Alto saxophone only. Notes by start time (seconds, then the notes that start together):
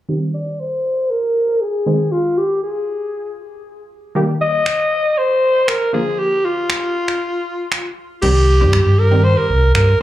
0.34 D5
0.60 C5
1.10 A#4
1.61 G#4
2.12 F4
2.38 G4
2.63 G#4
4.41 D#5
5.18 C5
5.68 A#4
5.94 G#4
6.19 G4
6.44 F4
8.22 G4
8.99 A#4
9.24 C5
9.37 A#4
9.75 A#4